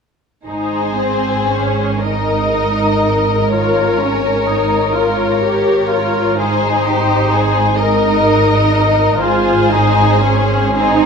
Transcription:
0.46 6.34 G#1 soft
0.46 6.35 G#2 soft
0.46 0.96 D#4 soft
0.46 2.00 G#4 soft
0.46 2.00 C5 soft
1.00 1.52 C4 soft
1.53 2.04 C#4 soft
2.03 3.53 D#4 soft
2.03 6.39 A#4 soft
2.03 3.53 D#5 soft
3.53 4.00 F4 soft
3.53 4.93 C#5 soft
4.00 4.48 C#4 soft
4.48 4.96 D#4 soft
4.96 5.44 F4 soft
4.96 6.36 C#5 soft
5.44 5.90 G4 soft
5.91 6.38 F4 soft
6.38 9.17 G#1 soft
6.38 9.18 G#2 soft
6.38 7.77 D#4 soft
6.38 6.85 G#4 soft
6.38 7.76 C5 medium
6.86 7.32 G4 soft
7.32 7.78 G#4 soft
7.78 9.19 D#4 medium
7.78 9.21 A#4 medium
7.78 9.21 D#5 soft
9.21 11.06 G#1 medium
9.21 10.74 G#2 medium
9.21 9.71 F4 medium
9.21 10.76 G#4 medium
9.21 10.73 C5 medium
9.72 10.24 D#4 medium
10.22 10.75 C#4 medium
10.76 11.06 C4 medium
10.76 11.06 D#4 medium
10.76 11.06 G#4 medium
10.76 11.06 C5 soft

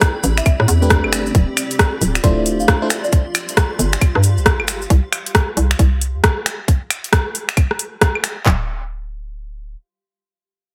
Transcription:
0.00 2.07 C4 medium
0.00 0.23 E4 loud
0.00 2.07 G4 medium
0.00 2.07 D5 medium
0.00 1.35 B5 medium
0.00 kick loud
0.00 cross-stick loud
0.00 closed hi-hat medium
0.00 shaker soft
0.24 0.42 A1 medium
0.24 open hi-hat medium
0.24 shaker loud
0.38 0.43 E5 medium
0.38 finger snap medium
0.38 closed hi-hat soft
0.38 shaker medium
0.46 0.55 E5 medium
0.46 kick loud
0.46 closed hi-hat medium
0.46 claves medium
0.46 shaker soft
0.60 0.66 A2 medium
0.60 cross-stick medium
0.68 1.06 E2 loud
0.68 open hi-hat loud
0.68 shaker loud
0.82 1.34 A3 medium
0.82 1.34 C4 medium
0.82 1.34 D4 medium
0.82 1.34 G4 medium
0.82 1.34 B4 medium
0.82 shaker medium
0.90 kick loud
0.90 cross-stick loud
0.90 closed hi-hat medium
0.90 shaker soft
1.04 1.31 G1 loud
1.04 claves medium
1.13 finger snap medium
1.13 open hi-hat medium
1.13 shaker medium
1.26 shaker medium
1.35 1.45 D1 loud
1.35 3.85 F4 medium
1.35 kick loud
1.35 closed hi-hat medium
1.35 shaker soft
1.57 finger snap medium
1.57 open hi-hat loud
1.57 claves medium
1.57 shaker medium
1.71 closed hi-hat medium
1.71 shaker medium
1.79 kick loud
1.79 cross-stick loud
1.79 closed hi-hat medium
1.79 shaker soft
2.01 2.19 D1 medium
2.01 open hi-hat medium
2.01 shaker loud
2.15 4.90 C6 medium
2.15 finger snap medium
2.15 closed hi-hat soft
2.15 shaker medium
2.24 2.61 D1 medium
2.24 2.79 A3 loud
2.24 2.79 D4 medium
2.24 2.79 E4 medium
2.24 2.79 F4 medium
2.24 2.79 C5 loud
2.24 2.33 D5 medium
2.24 kick loud
2.24 closed hi-hat medium
2.24 shaker soft
2.38 2.43 D5 medium
2.46 open hi-hat loud
2.46 shaker medium
2.60 2.66 F1 medium
2.60 3.02 F5 medium
2.60 shaker medium
2.68 kick loud
2.68 cross-stick loud
2.68 closed hi-hat medium
2.68 shaker soft
2.82 2.88 A3 loud
2.82 2.88 D4 medium
2.82 2.88 E4 medium
2.82 2.88 F4 medium
2.82 2.88 C5 loud
2.90 finger snap medium
2.90 open hi-hat medium
2.90 shaker loud
3.04 3.13 D5 medium
3.04 shaker medium
3.12 4.90 G4 loud
3.12 kick loud
3.12 closed hi-hat medium
3.12 shaker soft
3.35 finger snap medium
3.35 open hi-hat loud
3.35 claves medium
3.35 shaker medium
3.49 4.90 F5 medium
3.49 closed hi-hat medium
3.49 shaker soft
3.57 kick loud
3.57 cross-stick loud
3.57 closed hi-hat medium
3.57 shaker soft
3.79 3.97 G1 medium
3.79 open hi-hat loud
3.79 shaker loud
3.93 finger snap medium
3.93 closed hi-hat soft
3.93 shaker medium
4.01 kick loud
4.01 closed hi-hat medium
4.01 claves medium
4.01 shaker soft
4.15 4.39 G2 loud
4.15 cross-stick medium
4.23 open hi-hat loud
4.23 shaker medium
4.38 4.61 C2 loud
4.38 shaker soft
4.46 kick loud
4.46 cross-stick loud
4.46 closed hi-hat medium
4.46 shaker soft
4.60 4.87 G1 medium
4.60 claves medium
4.68 finger snap medium
4.68 open hi-hat medium
4.68 shaker medium
4.82 shaker soft
4.90 5.01 C2 loud
4.90 kick loud
4.90 closed hi-hat medium
5.13 finger snap medium
5.13 open hi-hat loud
5.13 claves medium
5.26 closed hi-hat medium
5.35 kick loud
5.35 cross-stick loud
5.35 closed hi-hat medium
5.57 5.75 C2 medium
5.57 open hi-hat loud
5.71 finger snap medium
5.71 closed hi-hat soft
5.79 6.17 C2 medium
5.79 kick loud
5.79 closed hi-hat medium
6.01 open hi-hat loud
6.15 6.22 E2 loud
6.24 kick loud
6.24 cross-stick loud
6.24 closed hi-hat medium
6.46 finger snap medium
6.46 open hi-hat medium
6.68 kick loud
6.68 closed hi-hat medium
6.90 finger snap medium
6.90 open hi-hat loud
6.90 claves medium
7.04 closed hi-hat medium
7.13 kick loud
7.13 cross-stick loud
7.13 closed hi-hat medium
7.35 open hi-hat loud
7.49 finger snap medium
7.49 closed hi-hat soft
7.57 kick loud
7.57 closed hi-hat medium
7.57 claves medium
7.71 cross-stick medium
7.79 open hi-hat loud
8.01 kick loud
8.01 cross-stick loud
8.01 closed hi-hat medium
8.15 claves medium
8.24 finger snap medium
8.24 open hi-hat medium
8.46 9.75 D1 loud
8.46 kick loud
8.46 clap medium

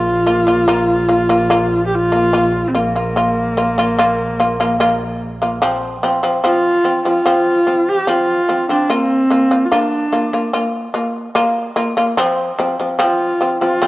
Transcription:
0.00 5.71 A#1 medium
0.00 0.19 A#3 medium
0.00 0.20 F4 medium
0.00 1.85 F4 medium
0.27 0.44 A#3 medium
0.27 0.44 F4 medium
0.47 0.64 A#3 medium
0.47 0.65 F4 medium
0.68 1.02 A#3 loud
0.68 1.02 F4 loud
1.09 1.26 A#3 medium
1.09 1.26 F4 medium
1.29 1.47 A#3 medium
1.29 1.47 F4 loud
1.50 2.00 A#3 loud
1.50 2.00 F4 loud
1.86 1.96 G4 medium
1.94 2.69 F4 loud
2.12 2.29 A#3 medium
2.12 2.29 F4 medium
2.33 2.66 A#3 medium
2.33 2.67 F4 medium
2.68 2.77 C4 medium
2.74 2.91 A#3 medium
2.74 5.25 A#3 medium
2.74 2.91 F4 medium
2.95 3.12 A#3 medium
2.95 3.12 F4 medium
3.16 3.49 A#3 medium
3.16 3.49 F4 medium
3.57 3.74 A#3 medium
3.57 3.74 F4 medium
3.78 3.94 A#3 medium
3.78 3.95 F4 medium
3.99 4.31 A#3 loud
3.99 4.31 F4 loud
4.40 4.56 A#3 medium
4.40 4.56 F4 medium
4.60 4.76 A#3 medium
4.60 4.76 F4 medium
4.80 5.29 A#3 medium
4.80 5.30 F4 loud
5.42 5.58 A#3 medium
5.42 5.58 F4 medium
5.62 5.95 F3 loud
5.62 5.95 C4 loud
6.03 6.20 F3 medium
6.03 6.20 C4 medium
6.23 6.40 F3 medium
6.23 6.40 C4 medium
6.44 6.77 F3 medium
6.44 6.77 C4 medium
6.44 7.02 F4 loud
6.84 7.01 F3 medium
6.84 7.02 C4 medium
7.05 7.22 F3 medium
7.05 7.22 C4 medium
7.05 7.90 F4 loud
7.26 7.59 F3 medium
7.26 7.59 C4 medium
7.67 8.00 F3 medium
7.67 8.00 C4 medium
7.89 8.11 G4 medium
8.07 8.41 F3 medium
8.07 8.41 C4 medium
8.07 8.70 F4 loud
8.49 8.65 F3 medium
8.49 8.66 C4 medium
8.69 8.86 F3 medium
8.69 8.86 C4 medium
8.69 8.93 D4 medium
8.90 9.23 A#3 medium
8.90 9.67 C4 medium
8.90 9.23 F4 medium
9.30 9.47 A#3 medium
9.30 9.48 F4 medium
9.51 9.68 A#3 medium
9.51 9.68 F4 medium
9.65 9.73 F4 medium
9.72 10.05 A#3 medium
9.72 10.54 D4 medium
9.72 10.05 F4 loud
10.13 10.29 A#3 medium
10.13 10.30 F4 medium
10.33 10.50 A#3 medium
10.33 10.50 F4 medium
10.53 10.87 A#3 medium
10.53 10.87 F4 medium
10.94 11.28 A#3 medium
10.94 11.28 F4 medium
11.35 11.69 A#3 loud
11.35 11.69 F4 loud
11.76 11.93 A#3 medium
11.76 11.94 F4 medium
11.97 12.14 A#3 medium
11.97 12.14 F4 medium
12.17 12.51 F3 loud
12.17 12.51 C4 loud
12.59 12.76 F3 medium
12.59 12.76 C4 medium
12.80 12.96 F3 medium
12.80 12.97 C4 medium
12.99 13.33 F3 medium
12.99 13.33 C4 loud
12.99 13.58 F4 medium
13.41 13.58 F3 medium
13.41 13.58 C4 medium
13.61 13.78 F3 medium
13.61 13.79 C4 medium
13.61 13.87 F4 medium
13.82 13.87 F3 medium
13.82 13.87 C4 loud

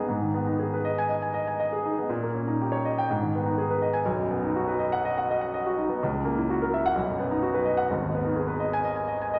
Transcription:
0.09 2.05 G#2 medium
0.22 0.41 D#3 medium
0.34 0.54 B3 medium
0.47 0.67 D#4 medium
0.59 0.79 G#4 medium
0.74 0.93 B4 medium
0.85 1.04 D#5 medium
0.98 1.17 G#5 medium
1.09 1.29 D#5 medium
1.22 1.42 G#5 medium
1.34 1.54 D#5 medium
1.47 1.67 G#5 medium
1.60 1.79 D#5 medium
1.73 1.92 G#4 medium
1.85 2.04 D#4 soft
1.99 2.10 B3 soft
2.09 3.06 A#2 medium
2.23 2.42 A#3 soft
2.34 2.54 C#4 medium
2.48 2.67 D#4 medium
2.62 2.80 G4 medium
2.72 2.91 C#5 medium
2.85 3.04 D#5 medium
2.98 3.10 G5 medium
3.10 4.05 G#2 medium
3.22 3.42 D#3 medium
3.35 3.55 B3 medium
3.46 3.66 D#4 medium
3.58 3.78 G#4 medium
3.71 3.90 B4 medium
3.82 4.02 D#5 medium
3.93 4.06 G#5 medium
4.05 5.97 B1 medium
4.17 4.38 F#2 soft
4.31 4.51 B3 medium
4.44 4.63 D#4 medium
4.56 4.76 F#4 medium
4.68 4.87 B4 medium
4.79 4.99 D#5 medium
4.92 5.12 F#5 medium
5.05 5.25 D#5 medium
5.18 5.37 F#5 medium
5.30 5.50 D#5 medium
5.41 5.61 F#5 medium
5.54 5.73 D#5 medium
5.66 5.85 F#4 medium
5.78 5.97 D#4 medium
5.89 6.02 B3 medium
6.03 6.94 C#2 medium
6.14 6.33 C#3 medium
6.25 6.44 A#3 medium
6.38 6.56 E4 medium
6.50 6.68 F#4 medium
6.62 6.80 A#4 medium
6.74 6.92 E5 medium
6.86 6.97 F#5 medium
6.95 7.87 B1 medium
7.09 7.27 F#2 medium
7.19 7.38 B3 medium
7.31 7.50 D#4 medium
7.43 7.62 F#4 medium
7.54 7.73 B4 medium
7.65 7.85 D#5 medium
7.77 7.90 F#5 medium
7.90 9.39 G#1 medium
8.02 8.21 D#2 medium
8.15 8.33 B3 medium
8.25 8.44 D#4 medium
8.36 8.55 G#4 medium
8.47 8.67 B4 medium
8.60 8.79 D#5 medium
8.73 8.92 G#5 medium
8.85 9.04 D#5 medium
8.96 9.16 G#5 medium
9.08 9.28 D#5 medium
9.22 9.39 G#5 medium
9.34 9.39 D#5 medium

